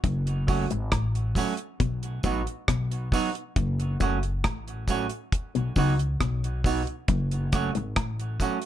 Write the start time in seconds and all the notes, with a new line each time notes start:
0.04 F#1 F#2, kick, closed hi-hat
0.27 closed hi-hat
0.47 F#3 A3 C#4 F#4, kick, open hi-hat, tambourine
0.70 G#1 G#2, closed hi-hat
0.92 A1 A2, kick, cross-stick, closed hi-hat, high woodblock
1.15 closed hi-hat
1.35 F#3 A3 C#4 F#4, kick, open hi-hat, tambourine
1.57 closed hi-hat
1.80 B1 B2, kick, closed hi-hat
2.03 closed hi-hat
2.23 A1 A2 F#3 B3 D#4 F#4, kick, closed hi-hat, tambourine
2.47 closed hi-hat
2.68 B1 B2, kick, cross-stick, closed hi-hat
2.91 closed hi-hat
3.12 F#3 B3 D#4 F#4, kick, open hi-hat, tambourine
3.35 closed hi-hat
3.56 F#1 F#2, kick, closed hi-hat
3.80 closed hi-hat
4.00 F#1 F#2 F#3 A3 C#4 F#4, kick, closed hi-hat, tambourine
4.23 closed hi-hat
4.44 A1 A2, kick, cross-stick, closed hi-hat, high woodblock
4.68 closed hi-hat
4.88 F#3 A3 C#4 F#4, kick, closed hi-hat, tambourine
5.10 closed hi-hat
5.32 kick, closed hi-hat
5.55 B1 B2, closed hi-hat
5.76 C#2 C#3 F#3 B3 D#4 F#4, kick, open hi-hat, tambourine
5.99 closed hi-hat
6.21 B1 B2, kick, cross-stick, closed hi-hat
6.44 closed hi-hat
6.64 F#3 B3 D#4 F#4, kick, open hi-hat, tambourine
6.87 closed hi-hat
7.08 F#1 F#2, kick, closed hi-hat
7.31 closed hi-hat
7.52 F#3 A3 C#4 F#4, kick, cross-stick, closed hi-hat, tambourine
7.75 G#1 G#2, closed hi-hat
7.96 A1 A2, kick, cross-stick, closed hi-hat, high woodblock
8.20 closed hi-hat
8.40 F#3 A3 C#4 F#4, kick, closed hi-hat, tambourine
8.62 closed hi-hat